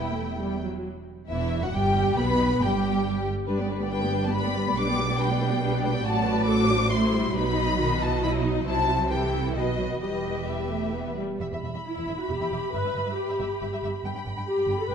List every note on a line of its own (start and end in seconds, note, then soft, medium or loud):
0.00 0.61 E1 medium
0.00 0.61 E2 soft
0.00 0.12 B3 medium
0.00 0.61 E4 medium
0.00 0.59 G5 medium
0.13 0.38 A3 medium
0.39 0.61 G3 medium
0.62 0.84 F#3 soft
1.28 1.60 E1 medium
1.28 1.61 E2 medium
1.28 1.61 E3 medium
1.28 1.60 E4 medium
1.28 1.60 E5 medium
1.62 1.74 F#2 medium
1.62 1.74 F#3 medium
1.62 1.73 F#4 medium
1.62 1.74 F#5 medium
1.73 2.17 G1 medium
1.73 2.17 G2 medium
1.73 2.17 G3 medium
1.73 2.17 G4 medium
1.73 2.18 G5 medium
2.18 2.61 B1 medium
2.18 2.61 B2 medium
2.18 2.62 B3 medium
2.18 2.62 B4 medium
2.18 2.61 B5 medium
2.62 3.26 G1 medium
2.62 3.25 G2 medium
2.62 3.27 G3 medium
2.62 3.25 G4 medium
2.62 3.26 G5 medium
3.46 4.73 G1 medium
3.46 4.73 G2 medium
3.46 3.58 G3 medium
3.46 3.58 D4 medium
3.46 3.57 B4 medium
3.58 3.70 B3 soft
3.58 3.69 G4 soft
3.58 3.69 D5 medium
3.69 3.81 G3 soft
3.69 3.81 D4 soft
3.69 3.80 B4 soft
3.81 3.92 B3 soft
3.81 3.91 G4 soft
3.81 3.91 D5 soft
3.92 4.01 G3 soft
3.92 4.01 D4 soft
3.92 4.01 B4 medium
3.92 4.21 G5 medium
4.02 4.13 B3 soft
4.02 4.13 G4 soft
4.02 4.13 D5 soft
4.12 4.24 G3 medium
4.12 4.24 D4 soft
4.12 4.23 B4 soft
4.23 4.35 B3 soft
4.23 4.34 G4 soft
4.23 4.34 D5 soft
4.23 4.35 A5 medium
4.34 4.45 G3 medium
4.34 4.45 D4 medium
4.34 4.44 B4 medium
4.34 4.77 B5 medium
4.45 4.56 B3 soft
4.45 4.56 G4 soft
4.45 4.56 D5 medium
4.55 4.67 G3 soft
4.55 4.67 D4 soft
4.55 4.67 B4 medium
4.66 4.77 B3 soft
4.66 4.77 G4 medium
4.66 4.77 D5 medium
4.77 6.03 B1 medium
4.77 6.03 B2 medium
4.77 4.87 G3 medium
4.77 4.87 D4 medium
4.77 4.87 B4 medium
4.77 5.21 D6 medium
4.87 4.99 B3 soft
4.87 4.98 G4 soft
4.87 4.98 D5 medium
4.98 5.09 G3 soft
4.98 5.09 D4 soft
4.98 5.09 B4 medium
5.08 5.20 B3 soft
5.08 5.19 G4 soft
5.08 5.19 D5 medium
5.18 5.29 G3 soft
5.18 5.29 D4 medium
5.18 5.29 B4 medium
5.18 5.83 G5 medium
5.29 5.41 B3 soft
5.29 5.41 G4 soft
5.29 5.41 D5 soft
5.40 5.52 G3 medium
5.40 5.52 D4 medium
5.40 5.51 B4 medium
5.51 5.62 B3 soft
5.51 5.62 G4 soft
5.51 5.62 D5 soft
5.62 5.72 G3 medium
5.62 5.72 D4 medium
5.62 5.72 B4 medium
5.73 5.84 B3 medium
5.73 5.84 G4 soft
5.73 5.84 D5 medium
5.83 5.94 G3 medium
5.83 5.94 D4 medium
5.83 5.94 B4 medium
5.83 6.05 G5 medium
5.93 6.05 B3 soft
5.93 6.04 G4 medium
5.93 6.03 D5 medium
6.04 7.31 A1 medium
6.04 7.32 A2 medium
6.04 6.45 F#3 medium
6.04 6.25 F#4 medium
6.04 7.31 F#4 medium
6.04 6.45 D5 medium
6.04 6.49 A5 medium
6.25 6.48 B4 medium
6.47 6.91 F#3 medium
6.47 6.69 A4 medium
6.47 7.34 C5 medium
6.47 6.91 D6 loud
6.68 6.91 D4 medium
6.92 7.13 A3 medium
6.92 7.35 E4 medium
6.92 7.36 C6 medium
7.14 7.36 G3 medium
7.35 8.64 B1 medium
7.35 8.64 B2 medium
7.35 7.79 F#3 medium
7.35 7.78 D#4 medium
7.35 7.57 B4 medium
7.35 7.99 B5 medium
7.56 7.78 D#5 medium
7.78 8.00 D#3 medium
7.78 8.21 D#4 medium
7.78 8.22 F#4 medium
7.78 8.65 D#5 medium
8.01 8.23 E3 medium
8.01 8.23 A5 medium
8.22 8.65 F#3 medium
8.22 8.66 D#4 medium
8.22 8.45 E4 medium
8.22 8.31 B5 medium
8.44 8.66 D#4 medium
8.66 9.54 C2 medium
8.66 9.54 C3 medium
8.66 9.10 F#3 medium
8.66 8.88 E4 medium
8.66 9.10 E4 medium
8.66 9.11 C5 medium
8.66 9.08 A5 medium
8.88 8.96 F#4 medium
9.12 9.56 E3 soft
9.12 9.55 E4 medium
9.12 9.33 G4 medium
9.12 9.56 A4 soft
9.12 9.56 G5 medium
9.35 9.57 E4 medium
9.56 10.02 B1 medium
9.56 10.02 B2 medium
9.56 9.64 D#3 medium
9.56 10.02 F#4 soft
9.56 10.01 B4 soft
9.56 10.01 D#5 medium
9.79 9.87 F#3 soft
10.02 11.18 E1 soft
10.02 11.17 E2 soft
10.02 10.43 G3 soft
10.02 11.20 G4 soft
10.02 10.44 G4 soft
10.02 11.18 B4 soft
10.02 10.47 D#5 medium
10.48 10.70 G3 medium
10.48 11.17 E5 medium
10.72 10.95 A3 medium
10.95 11.18 B3 medium
11.19 11.40 G3 soft
11.40 11.45 E1 soft
11.40 11.45 E2 soft
11.40 11.45 E5 soft
11.40 14.00 B5 soft
11.52 11.56 E2 soft
11.52 11.56 E5 soft
11.63 11.67 E1 soft
11.63 11.68 E2 soft
11.63 11.68 E5 soft
11.74 11.79 E2 soft
11.74 11.78 E5 soft
11.85 12.16 E4 soft
11.95 12.01 E2 soft
11.95 12.00 E5 soft
12.06 12.11 E1 soft
12.06 12.11 E2 medium
12.06 12.11 E5 medium
12.19 12.29 F#4 soft
12.29 12.34 E1 soft
12.29 12.34 E2 soft
12.29 12.73 G4 medium
12.29 12.33 E5 soft
12.40 12.44 E2 soft
12.40 12.45 E5 soft
12.51 12.56 E1 soft
12.51 12.55 E2 soft
12.51 12.56 E5 soft
12.73 12.78 G1 medium
12.73 12.78 G2 soft
12.73 13.16 B4 medium
12.73 12.78 E5 soft
12.85 12.89 G2 soft
12.85 12.90 E5 soft
12.95 12.99 G1 soft
12.95 12.99 G2 soft
12.95 13.00 E5 soft
13.06 13.11 G2 medium
13.06 13.10 E5 soft
13.16 13.81 G4 medium
13.28 13.32 G2 soft
13.28 13.33 E5 soft
13.39 13.44 G1 medium
13.39 13.44 G2 medium
13.39 13.44 E5 soft
13.62 13.66 G1 soft
13.62 13.66 G2 soft
13.62 13.66 E5 soft
13.73 13.77 G2 soft
13.73 13.77 E5 medium
13.83 13.88 G1 soft
13.83 13.88 G2 soft
13.83 13.88 E5 soft
14.04 14.09 G1 medium
14.04 14.08 G2 medium
14.04 14.09 G5 medium
14.04 14.95 B5 soft
14.15 14.19 G2 soft
14.15 14.20 G5 soft
14.26 14.30 G1 soft
14.26 14.30 G2 soft
14.26 14.31 G5 soft
14.36 14.40 G2 medium
14.36 14.41 G5 medium
14.47 14.77 G4 medium
14.58 14.62 G2 soft
14.58 14.62 G5 soft
14.67 14.72 G1 medium
14.67 14.72 G2 medium
14.67 14.73 G5 medium
14.80 14.90 A4 medium
14.89 14.94 G1 soft
14.89 14.93 G2 soft
14.89 14.95 B4 medium
14.89 14.95 G5 soft